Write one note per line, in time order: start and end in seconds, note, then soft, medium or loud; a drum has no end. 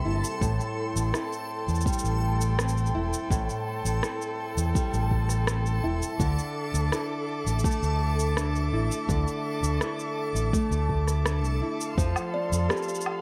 0.00 0.41 C3 medium
0.00 1.18 G3 medium
0.00 0.37 A#3 medium
0.00 1.13 C4 medium
0.00 12.00 A4 medium
0.00 0.49 A#4 medium
0.00 0.37 E5 medium
0.00 12.00 A5 medium
0.00 6.16 C6 medium
0.05 0.20 G1 medium
0.05 1.14 E4 medium
0.24 shaker medium
0.41 0.56 A1 medium
0.41 3.30 A2 medium
0.41 11.94 A4 medium
0.41 6.15 G5 medium
0.41 kick medium
0.41 shaker soft
0.60 shaker soft
0.96 1.10 A1 medium
0.96 shaker medium
1.14 2.57 C4 medium
1.14 2.94 E4 medium
1.14 4.04 A4 medium
1.14 cross-stick medium
1.14 shaker soft
1.33 shaker soft
1.68 1.83 E2 medium
1.68 shaker soft
1.75 shaker soft
1.81 shaker soft
1.86 4.74 G3 medium
1.86 kick loud
1.86 shaker soft
1.93 shaker soft
1.99 shaker medium
2.04 2.89 A1 medium
2.04 shaker soft
2.41 shaker medium
2.58 4.02 C4 medium
2.58 cross-stick medium
2.58 shaker medium
2.68 shaker soft
2.77 shaker soft
2.86 shaker soft
2.95 3.09 E1 medium
2.95 4.03 E4 medium
3.13 shaker medium
3.30 3.45 A1 medium
3.30 6.20 A2 medium
3.30 kick loud
3.30 shaker soft
3.49 shaker soft
3.85 3.99 A1 medium
3.85 shaker medium
4.03 5.46 C4 medium
4.03 5.83 E4 medium
4.03 6.93 A4 medium
4.03 cross-stick medium
4.03 shaker soft
4.22 shaker soft
4.57 4.72 E2 medium
4.57 shaker medium
4.75 6.27 G3 medium
4.75 kick loud
4.75 shaker soft
4.94 5.78 A1 medium
4.94 shaker soft
5.11 kick medium
5.29 cross-stick soft
5.29 shaker medium
5.47 6.27 C4 medium
5.47 cross-stick medium
5.47 shaker soft
5.66 shaker soft
5.84 5.98 E1 medium
5.84 6.92 E4 medium
6.02 shaker medium
6.20 6.34 D2 medium
6.20 9.08 D3 medium
6.20 11.94 E5 medium
6.20 11.94 D6 medium
6.20 kick medium
6.20 shaker soft
6.39 shaker soft
6.74 6.88 D2 medium
6.74 shaker medium
6.92 8.35 D4 medium
6.92 8.72 E4 medium
6.92 9.82 A4 medium
6.92 cross-stick medium
6.92 shaker soft
7.47 7.61 A1 medium
7.47 shaker medium
7.59 shaker soft
7.64 10.53 A3 medium
7.64 kick loud
7.64 shaker soft
7.71 shaker soft
7.83 8.67 D2 medium
7.83 shaker soft
8.19 shaker medium
8.37 9.80 D4 medium
8.37 cross-stick medium
8.37 shaker medium
8.56 shaker soft
8.73 8.87 A1 medium
8.73 9.81 E4 medium
8.92 shaker medium
9.09 9.23 D2 medium
9.09 11.97 D3 medium
9.09 kick loud
9.09 shaker soft
9.28 shaker soft
9.63 9.77 D2 medium
9.63 shaker medium
9.81 11.25 D4 medium
9.81 11.61 E4 medium
9.81 12.71 A4 medium
9.81 cross-stick medium
9.81 shaker soft
9.99 shaker soft
10.35 10.49 A1 medium
10.35 shaker medium
10.53 13.21 A3 medium
10.53 kick medium
10.53 shaker soft
10.71 11.44 D2 loud
10.71 shaker soft
10.89 kick medium
11.08 cross-stick soft
11.08 shaker medium
11.26 12.05 D4 medium
11.26 cross-stick medium
11.26 shaker soft
11.44 11.58 C2 medium
11.44 shaker soft
11.62 12.05 E4 medium
11.81 shaker medium
11.98 12.12 F2 medium
11.98 13.21 F3 medium
11.98 13.21 A4 medium
11.98 12.32 C5 medium
11.98 13.21 C5 medium
11.98 13.21 F5 medium
11.98 13.21 C6 medium
11.98 kick loud
11.98 shaker soft
12.16 low woodblock medium
12.16 shaker soft
12.34 12.68 D5 medium
12.52 12.67 F2 medium
12.52 shaker medium
12.69 13.21 C4 medium
12.69 13.21 F4 medium
12.69 13.04 G4 loud
12.69 13.21 A4 medium
12.69 cross-stick medium
12.69 shaker soft
12.77 shaker soft
12.83 shaker soft
12.89 shaker soft
12.95 shaker soft
13.01 shaker soft
13.06 low woodblock medium